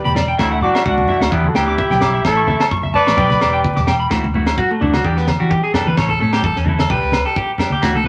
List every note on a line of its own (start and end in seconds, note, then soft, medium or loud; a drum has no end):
0.00 0.17 G4 medium
0.00 0.17 B4 medium
0.04 0.33 E1 medium
0.04 0.19 D4 soft
0.04 0.18 G4 medium
0.04 0.11 B5 medium
0.04 high conga medium
0.15 0.23 D5 medium
0.15 snare medium
0.15 low conga medium
0.15 low agogo medium
0.28 0.34 G5 medium
0.38 0.58 D2 loud
0.38 0.53 E3 medium
0.38 0.53 A3 medium
0.38 0.61 A3 medium
0.38 0.53 E4 medium
0.38 0.61 E4 medium
0.38 0.54 F#4 medium
0.38 0.46 E5 medium
0.38 kick medium
0.38 snare medium
0.38 low agogo medium
0.51 0.57 F#5 medium
0.61 0.75 E3 medium
0.61 0.75 A3 medium
0.61 0.84 D4 medium
0.61 0.75 E4 medium
0.61 0.84 F#4 medium
0.61 0.74 F#4 medium
0.61 0.69 D6 medium
0.61 low conga medium
0.74 0.89 A3 soft
0.74 0.88 E4 soft
0.74 0.88 F#4 medium
0.74 0.80 E5 medium
0.74 snare medium
0.74 low agogo medium
0.85 1.05 C#2 medium
0.85 1.32 D4 medium
0.85 1.33 F#4 medium
0.85 0.92 F#5 medium
0.85 kick medium
0.98 high conga medium
1.08 1.23 E3 medium
1.08 1.24 A3 medium
1.08 1.24 E4 medium
1.08 1.24 F#4 medium
1.08 1.16 E5 medium
1.08 low conga medium
1.21 1.30 D2 loud
1.21 1.27 F#5 medium
1.21 snare medium
1.21 low agogo medium
1.31 1.51 E2 loud
1.31 1.46 E3 medium
1.31 1.49 B3 medium
1.31 1.46 B3 medium
1.31 1.47 D4 medium
1.31 1.50 E4 medium
1.31 1.47 G4 medium
1.31 kick medium
1.44 1.57 F#4 medium
1.44 high conga medium
1.48 1.57 A4 medium
1.54 1.74 D2 medium
1.54 1.67 E3 medium
1.54 1.68 B3 medium
1.54 1.68 D4 medium
1.54 2.25 E4 medium
1.54 2.25 G4 medium
1.54 1.66 G4 medium
1.54 1.62 G5 medium
1.54 snare medium
1.54 low agogo medium
1.67 1.81 B3 soft
1.67 1.81 D4 medium
1.67 1.80 G4 medium
1.67 1.74 D6 medium
1.78 1.85 E5 medium
1.78 kick medium
1.78 high conga medium
1.90 2.19 B1 medium
1.90 2.05 B3 soft
1.90 2.04 D4 soft
1.90 2.04 G4 medium
1.90 1.97 G5 medium
1.90 snare soft
1.90 high conga medium
2.01 2.08 D6 medium
2.01 snare medium
2.01 low conga medium
2.01 low agogo medium
2.14 2.20 E5 medium
2.25 2.44 A1 loud
2.25 2.39 E3 medium
2.25 2.40 A3 medium
2.25 2.40 C#4 medium
2.25 2.68 E4 medium
2.25 2.40 A4 medium
2.25 2.69 A4 loud
2.25 kick medium
2.25 snare medium
2.25 low agogo medium
2.37 2.43 C#6 medium
2.47 2.60 E3 medium
2.47 2.60 A3 medium
2.47 2.60 C#4 medium
2.47 2.59 A4 medium
2.47 2.55 E5 medium
2.47 high conga medium
2.47 low conga medium
2.60 2.74 A3 soft
2.60 2.74 C#4 soft
2.60 2.73 A4 medium
2.60 2.66 A5 medium
2.60 snare medium
2.60 low agogo medium
2.71 2.91 F#1 medium
2.71 2.78 C#6 medium
2.71 kick medium
2.83 2.89 E5 medium
2.83 high conga medium
2.94 3.09 A3 medium
2.94 3.09 C#4 medium
2.94 3.10 A4 medium
2.94 3.84 B4 loud
2.94 3.84 D5 loud
2.94 3.01 A5 medium
2.94 muted clean electric guitar stroke medium
2.94 low conga medium
3.07 3.16 A1 medium
3.07 3.13 C#6 medium
3.07 snare medium
3.07 low agogo medium
3.17 3.37 B1 loud
3.17 3.32 B3 medium
3.17 3.32 D4 medium
3.17 3.33 G4 medium
3.17 3.24 G5 medium
3.17 kick medium
3.17 low conga medium
3.30 3.36 B5 medium
3.30 snare soft
3.30 high conga medium
3.40 3.60 E1 medium
3.40 3.53 B3 medium
3.40 3.53 D4 medium
3.40 3.51 G4 medium
3.40 3.47 D6 medium
3.40 snare medium
3.40 low agogo medium
3.52 3.67 D4 soft
3.52 3.66 G4 medium
3.52 3.59 G5 medium
3.64 kick medium
3.64 high conga medium
3.75 4.05 E1 medium
3.75 3.90 D4 soft
3.75 3.89 G4 medium
3.75 3.83 D6 medium
3.75 snare soft
3.75 high conga medium
3.87 3.94 G5 medium
3.87 snare medium
3.87 low conga medium
3.87 low agogo medium
4.00 4.06 B5 medium
4.10 4.21 D2 loud
4.10 4.25 E3 medium
4.10 4.25 A3 medium
4.10 4.25 E4 medium
4.10 4.25 F#4 medium
4.10 kick medium
4.10 snare medium
4.10 low agogo medium
4.24 4.32 D2 medium
4.24 high conga medium
4.34 4.54 D2 medium
4.34 4.46 E3 medium
4.34 4.47 A3 medium
4.34 4.46 E4 medium
4.34 4.45 F#4 medium
4.34 low conga medium
4.46 4.61 A3 soft
4.46 4.60 E4 soft
4.46 4.60 F#4 medium
4.46 snare medium
4.46 low agogo medium
4.57 4.69 F#4 medium
4.57 kick medium
4.57 low conga medium
4.71 4.80 A3 soft
4.80 5.01 D2 medium
4.80 4.95 E3 medium
4.80 4.96 A3 medium
4.80 4.93 D4 medium
4.80 4.96 E4 medium
4.80 4.96 F#4 medium
4.80 high conga medium
4.80 low conga medium
4.93 5.04 F#4 medium
4.93 snare medium
4.93 high conga medium
4.93 low agogo medium
5.04 5.34 E2 loud
5.04 5.16 E3 medium
5.04 5.15 D4 medium
5.04 5.16 G4 medium
5.04 5.15 G4 medium
5.04 muted clean electric guitar stroke medium
5.04 kick medium
5.16 5.27 B3 medium
5.16 5.30 B3 soft
5.16 5.30 D4 soft
5.16 5.29 G4 soft
5.16 snare soft
5.27 muted clean electric guitar stroke medium
5.27 snare medium
5.27 high conga medium
5.27 low agogo medium
5.40 5.60 E3 medium
5.40 5.54 B3 soft
5.40 5.53 D4 soft
5.40 5.51 F#4 medium
5.40 5.53 G4 medium
5.51 5.63 G4 medium
5.51 kick medium
5.64 5.73 G#4 medium
5.74 5.88 E3 medium
5.74 5.89 B3 medium
5.74 5.89 D4 medium
5.74 5.89 G4 medium
5.74 5.86 A4 medium
5.74 snare medium
5.74 low conga medium
5.74 low agogo medium
5.85 5.95 E3 medium
5.85 5.97 B4 medium
5.85 high conga medium
5.97 6.16 A1 medium
5.97 6.12 E3 medium
5.97 6.12 A3 medium
5.97 6.12 C#4 medium
5.97 6.12 A4 medium
5.97 6.09 C#5 medium
5.97 kick medium
5.97 snare medium
5.97 low agogo medium
6.09 6.19 A4 medium
6.09 high conga medium
6.19 6.40 A2 medium
6.19 6.33 A3 medium
6.19 6.33 C#4 medium
6.19 6.32 A4 medium
6.19 low conga medium
6.33 6.47 A3 soft
6.33 6.46 C#4 soft
6.33 6.43 G4 medium
6.33 6.46 A4 medium
6.33 snare medium
6.33 low agogo medium
6.43 6.54 A1 medium
6.43 6.56 A4 medium
6.43 kick medium
6.43 low conga medium
6.56 6.85 E2 medium
6.56 6.68 C#4 soft
6.56 snare soft
6.66 6.81 E3 medium
6.66 6.82 A3 medium
6.66 6.82 C#4 medium
6.66 6.79 E4 medium
6.66 6.82 A4 medium
6.66 high conga medium
6.66 low conga medium
6.78 6.90 A4 medium
6.78 snare medium
6.78 high conga medium
6.78 low agogo medium
6.89 7.00 B1 loud
6.89 7.02 D4 medium
6.89 7.00 G4 medium
6.89 7.23 B4 loud
6.89 muted clean electric guitar stroke medium
6.89 kick medium
7.01 7.22 C#2 medium
7.01 7.16 D4 soft
7.01 7.15 G4 medium
7.12 snare medium
7.12 high conga medium
7.12 low agogo medium
7.25 7.39 D4 soft
7.25 7.38 G4 medium
7.25 7.36 A4 medium
7.36 7.50 G4 medium
7.36 kick medium
7.58 7.73 B3 medium
7.58 7.74 D4 medium
7.58 7.74 G4 medium
7.58 snare medium
7.58 low conga medium
7.58 low agogo medium
7.70 7.82 G4 medium
7.70 high conga medium
7.82 7.93 D2 loud
7.82 7.97 E3 medium
7.82 7.97 A3 medium
7.82 7.97 E4 medium
7.82 7.95 F#4 medium
7.82 muted clean electric guitar stroke medium
7.82 kick medium
7.82 snare medium
7.82 low agogo medium
7.94 8.04 D2 medium
7.94 8.06 A4 medium
7.94 high conga medium
8.04 8.08 E3 medium
8.04 low conga medium